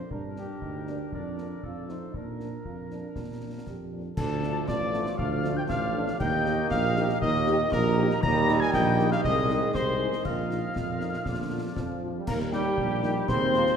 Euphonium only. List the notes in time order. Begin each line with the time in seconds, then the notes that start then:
0.11 D4
0.62 D#4
0.89 D4
1.65 F4
1.90 D#4
2.15 D4
2.65 F4
2.91 D4
3.68 G4
12.27 A#3
12.53 G3
13.29 C4